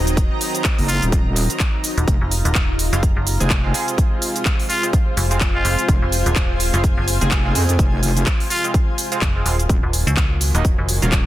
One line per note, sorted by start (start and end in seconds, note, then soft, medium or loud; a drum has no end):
0.00 0.29 D#1 loud
0.00 2.04 D#3 medium
0.00 2.04 F#3 medium
0.00 2.04 C4 medium
0.00 2.08 D#4 medium
0.00 3.92 D#5 loud
0.00 2.86 A#5 medium
0.07 closed hi-hat medium
0.07 shaker soft
0.17 kick loud
0.17 closed hi-hat medium
0.17 shaker soft
0.41 open hi-hat loud
0.41 shaker medium
0.55 closed hi-hat medium
0.55 shaker soft
0.64 kick loud
0.64 clap loud
0.64 closed hi-hat medium
0.64 shaker soft
0.78 1.00 F#1 loud
0.78 open hi-hat medium
0.89 1.04 F4 loud
0.89 open hi-hat loud
0.89 shaker medium
1.02 1.48 D#1 loud
1.02 closed hi-hat medium
1.02 shaker soft
1.12 kick loud
1.12 closed hi-hat medium
1.12 shaker soft
1.36 open hi-hat loud
1.36 shaker medium
1.50 closed hi-hat medium
1.50 shaker soft
1.60 kick loud
1.60 clap loud
1.60 closed hi-hat medium
1.60 shaker soft
1.84 open hi-hat loud
1.84 shaker medium
1.98 2.06 D#1 loud
1.98 closed hi-hat medium
1.98 shaker soft
2.08 2.19 F1 loud
2.08 9.66 C3 medium
2.08 9.66 G#3 medium
2.08 9.70 F4 medium
2.08 9.66 F4 medium
2.08 kick loud
2.08 closed hi-hat medium
2.08 shaker soft
2.21 2.43 F1 loud
2.31 open hi-hat loud
2.31 shaker medium
2.45 2.91 D#1 loud
2.45 closed hi-hat medium
2.45 shaker soft
2.55 kick loud
2.55 clap loud
2.55 closed hi-hat medium
2.55 shaker soft
2.79 open hi-hat loud
2.79 shaker medium
2.84 11.26 C5 medium
2.93 3.14 F1 loud
2.93 3.00 G#3 medium
2.93 3.00 C4 medium
2.93 3.00 F4 medium
2.93 closed hi-hat medium
2.93 shaker soft
3.03 kick loud
3.03 closed hi-hat medium
3.03 shaker soft
3.12 11.26 G#5 medium
3.17 3.38 F#1 loud
3.27 open hi-hat loud
3.27 shaker medium
3.40 3.73 F1 loud
3.40 3.52 G#3 medium
3.40 3.52 C4 medium
3.40 3.52 G#4 medium
3.40 closed hi-hat medium
3.40 shaker soft
3.50 kick loud
3.50 clap loud
3.50 closed hi-hat medium
3.50 shaker soft
3.64 3.73 G#3 medium
3.64 3.73 C4 medium
3.64 3.73 F4 medium
3.74 4.80 G#3 medium
3.74 4.80 C4 medium
3.74 4.80 G#4 medium
3.74 open hi-hat loud
3.74 shaker medium
3.88 closed hi-hat medium
3.88 shaker soft
3.98 kick loud
3.98 closed hi-hat medium
3.98 shaker soft
4.22 open hi-hat loud
4.22 shaker medium
4.36 closed hi-hat medium
4.36 shaker soft
4.45 kick loud
4.45 clap loud
4.45 closed hi-hat medium
4.45 shaker soft
4.59 open hi-hat medium
4.69 4.85 F4 loud
4.69 open hi-hat loud
4.69 shaker medium
4.83 4.90 G#3 medium
4.83 4.90 C4 medium
4.83 4.90 F4 loud
4.83 closed hi-hat medium
4.83 shaker soft
4.93 kick loud
4.93 closed hi-hat medium
4.93 shaker soft
5.17 5.63 F1 loud
5.17 open hi-hat loud
5.17 shaker medium
5.31 5.38 G#3 medium
5.31 5.38 C4 medium
5.31 5.38 F4 loud
5.31 closed hi-hat medium
5.31 shaker soft
5.41 kick loud
5.41 clap loud
5.41 closed hi-hat medium
5.41 shaker soft
5.55 5.63 G#3 medium
5.55 5.63 C4 medium
5.55 5.63 F4 medium
5.55 5.89 F4 medium
5.65 5.76 F1 loud
5.65 5.75 G#3 medium
5.65 5.75 C4 medium
5.65 5.75 F4 medium
5.65 open hi-hat loud
5.65 shaker medium
5.79 closed hi-hat medium
5.79 shaker soft
5.89 6.00 F1 loud
5.89 kick loud
5.89 closed hi-hat medium
5.89 shaker soft
6.02 6.24 F1 loud
6.12 open hi-hat loud
6.12 shaker medium
6.26 6.72 D#1 loud
6.26 closed hi-hat medium
6.26 shaker soft
6.36 kick loud
6.36 clap loud
6.36 closed hi-hat medium
6.36 shaker soft
6.60 open hi-hat loud
6.60 shaker medium
6.74 6.95 F1 loud
6.74 6.81 G#3 medium
6.74 6.81 C4 medium
6.74 6.81 F4 medium
6.74 closed hi-hat medium
6.74 shaker soft
6.84 kick loud
6.84 closed hi-hat medium
6.84 shaker soft
6.97 7.19 F#1 loud
7.08 open hi-hat loud
7.08 shaker medium
7.21 7.54 F1 loud
7.21 7.33 G#3 medium
7.21 7.33 C4 medium
7.21 7.33 G#4 medium
7.21 closed hi-hat soft
7.21 shaker soft
7.31 kick loud
7.31 clap loud
7.31 closed hi-hat medium
7.31 shaker soft
7.45 7.54 G#3 medium
7.45 7.54 C4 medium
7.45 7.54 F4 medium
7.55 7.77 F2 loud
7.55 8.61 G#3 medium
7.55 8.61 C4 medium
7.55 8.61 G#4 medium
7.55 open hi-hat loud
7.55 shaker medium
7.69 closed hi-hat medium
7.69 shaker soft
7.79 8.25 F1 loud
7.79 kick loud
7.79 closed hi-hat medium
7.79 shaker soft
8.03 open hi-hat loud
8.03 shaker medium
8.17 closed hi-hat medium
8.17 shaker soft
8.26 kick loud
8.26 clap loud
8.26 closed hi-hat medium
8.26 shaker soft
8.40 open hi-hat medium
8.50 8.66 F4 medium
8.50 open hi-hat loud
8.50 shaker medium
8.64 8.71 G#3 medium
8.64 8.71 C4 medium
8.64 8.71 F4 loud
8.64 closed hi-hat soft
8.64 shaker soft
8.74 kick loud
8.74 closed hi-hat medium
8.74 shaker soft
8.98 open hi-hat loud
8.98 shaker medium
9.12 9.19 G#3 medium
9.12 9.19 C4 medium
9.12 9.19 F4 loud
9.12 closed hi-hat medium
9.12 shaker soft
9.22 9.44 F1 loud
9.22 kick loud
9.22 clap loud
9.22 closed hi-hat medium
9.22 shaker soft
9.36 9.44 G#3 medium
9.36 9.44 C4 medium
9.36 9.44 F4 medium
9.46 9.68 D#1 loud
9.46 9.56 G#3 medium
9.46 9.56 C4 medium
9.46 9.56 F4 medium
9.46 open hi-hat loud
9.46 shaker medium
9.59 closed hi-hat medium
9.59 shaker soft
9.69 9.81 D#1 loud
9.69 11.26 D#3 medium
9.69 11.26 F#3 medium
9.69 11.26 A#3 medium
9.69 kick loud
9.69 closed hi-hat medium
9.69 shaker soft
9.83 10.05 D#1 loud
9.93 open hi-hat loud
9.93 shaker medium
10.07 10.52 C#2 loud
10.07 closed hi-hat medium
10.07 shaker soft
10.13 11.26 D#5 medium
10.17 kick loud
10.17 clap loud
10.17 closed hi-hat medium
10.17 shaker soft
10.26 11.26 A#5 medium
10.41 open hi-hat loud
10.41 shaker medium
10.55 10.76 D#1 loud
10.55 10.62 F#3 medium
10.55 10.62 A#3 medium
10.55 10.62 D#4 medium
10.55 closed hi-hat soft
10.55 shaker soft
10.65 kick loud
10.65 closed hi-hat medium
10.65 shaker soft
10.78 11.00 F1 loud
10.89 open hi-hat loud
10.89 shaker medium
11.02 11.26 D#1 loud
11.02 11.14 F#3 medium
11.02 11.14 A#3 medium
11.02 11.14 F4 medium
11.02 closed hi-hat medium
11.02 shaker soft
11.12 kick loud
11.12 clap loud
11.12 closed hi-hat medium
11.12 shaker soft